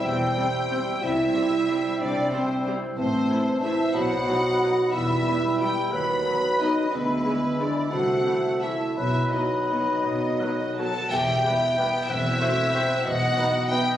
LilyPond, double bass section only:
\new Staff \with { instrumentName = "Double bass section" } { \clef bass \time 3/4 \key c \major \tempo 4 = 180 e,,4 r2 | c,4 r2 | c,4 r2 | \key e \minor a,,4 r2 |
b,,4 r2 | e,,4 r2 | dis,4 r2 | d,4 r2 |
c,4 r2 | b,,4 r2 | b,,4 r2 | e,,4 r2 |
e,,4 r2 | e,,4 r2 | }